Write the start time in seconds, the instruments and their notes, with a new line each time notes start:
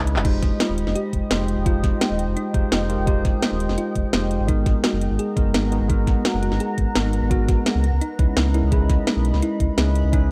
Already playing: sub bass C#2, tine electric piano G#3 C#4 D#4 E4 B4, ambient pad D#5 B5
0.07 closed hi-hat
0.16 sub bass F1, clap
0.24 tine electric piano G#3 D#4 F4 G4 C5, synth arpeggio sound D#4, ambient pad G5, kick, closed hi-hat, crash
0.43 sub bass F1, kick, snare, closed hi-hat
0.60 synth arpeggio sound F4, snare, closed hi-hat
0.69 sub bass D#1
0.78 closed hi-hat
0.87 sub bass F1, snare
0.95 synth arpeggio sound G4, closed hi-hat
1.13 sub bass F1, kick, closed hi-hat
1.30 sub bass F1, tine electric piano G#3 D#4 F4 G4 C5, synth arpeggio sound D#4, snare, closed hi-hat
1.48 closed hi-hat
1.57 sub bass F1
1.65 tine electric piano G#3 D#4 F4 G4 C5, synth arpeggio sound F4, kick, closed hi-hat
1.84 sub bass F1, kick, snare, closed hi-hat
2.01 synth arpeggio sound G4, snare, closed hi-hat
2.10 sub bass D#1
2.19 closed hi-hat
2.28 sub bass F1
2.37 synth arpeggio sound D#4, closed hi-hat
2.54 sub bass F1, tine electric piano G#3 D#4 F4 G4 C5, kick, closed hi-hat
2.72 sub bass F1, synth arpeggio sound F4, snare, closed hi-hat
2.89 tine electric piano G#3 D#4 F4 G4 A#4, closed hi-hat
2.98 sub bass F1
3.06 tine electric piano G#3 D#4 F4 G4 C5, synth arpeggio sound G4, kick, closed hi-hat
3.25 sub bass F1, kick, snare, closed hi-hat
3.42 synth arpeggio sound D#4, snare, closed hi-hat
3.52 sub bass D#1
3.60 closed hi-hat
3.69 sub bass F1, snare
3.78 synth arpeggio sound F4, closed hi-hat
3.95 sub bass F1, kick, closed hi-hat
4.13 sub bass F1, tine electric piano G#3 D#4 F4 G4 C5, synth arpeggio sound G4, snare, closed hi-hat
4.31 closed hi-hat
4.40 sub bass G#1
4.47 tine electric piano G#3 B3 D#4 F#4 A#4, ambient pad B3 F#5 A#5, synth arpeggio sound D#4, kick, closed hi-hat
4.66 sub bass G#1, kick, snare, closed hi-hat
4.84 synth arpeggio sound F#4, snare, closed hi-hat
4.93 sub bass F#1
5.01 closed hi-hat
5.11 sub bass G#1
5.19 synth arpeggio sound G#4, closed hi-hat
5.36 sub bass F#1, tine electric piano G#3 B3 D#4 F#4 A#4, kick, closed hi-hat
5.54 sub bass G#1, synth arpeggio sound D#4, snare, closed hi-hat
5.71 tine electric piano G#3 B3 D#4 F#4 G#4, closed hi-hat
5.81 sub bass G#1
5.88 tine electric piano G#3 B3 D#4 F#4 A#4, synth arpeggio sound D#4, kick, closed hi-hat
6.07 sub bass G#1, kick, snare, closed hi-hat
6.25 synth arpeggio sound F#4, snare, closed hi-hat
6.34 sub bass F#1
6.42 synth arpeggio sound F#4, closed hi-hat
6.52 sub bass G#1, snare
6.60 synth arpeggio sound G#4, closed hi-hat
6.78 sub bass G#1, kick, closed hi-hat
6.95 sub bass G#1, tine electric piano G#3 B3 D#4 F#4 A#4, synth arpeggio sound D#4, snare, closed hi-hat
7.13 closed hi-hat
7.22 sub bass G#1
7.30 tine electric piano G#3 B3 D#4 F#4 A#4, synth arpeggio sound F#4, kick, closed hi-hat
7.48 sub bass G#1, synth arpeggio sound F#4, kick, snare, closed hi-hat
7.66 synth arpeggio sound G#4, snare, closed hi-hat
7.75 sub bass C#2
7.84 ambient pad D#5 B5, closed hi-hat
7.93 sub bass C#2
8.01 synth arpeggio sound D#4, closed hi-hat
8.18 sub bass C#2, tine electric piano G#3 C#4 D#4 E4 B4, kick, closed hi-hat
8.37 sub bass C#2, synth arpeggio sound E4, snare, closed hi-hat
8.54 tine electric piano G#3 C#4 D#4 E4 A#4, synth arpeggio sound E4, closed hi-hat
8.63 sub bass C#2
8.71 tine electric piano G#3 C#4 D#4 E4 B4, synth arpeggio sound G#4, kick, closed hi-hat
8.90 sub bass C#2, kick, snare, closed hi-hat
9.07 synth arpeggio sound D#4, snare, closed hi-hat
9.16 sub bass B1
9.25 closed hi-hat
9.34 sub bass C#2, snare
9.42 synth arpeggio sound E4, closed hi-hat
9.60 sub bass C#2, synth arpeggio sound E4, kick, closed hi-hat
9.77 sub bass C#2, tine electric piano G#3 C#4 D#4 E4 B4, synth arpeggio sound G#4, snare, closed hi-hat
9.95 closed hi-hat
10.04 sub bass C#2
10.12 tine electric piano G#3 C#4 D#4 E4 B4, synth arpeggio sound D#4, kick, closed hi-hat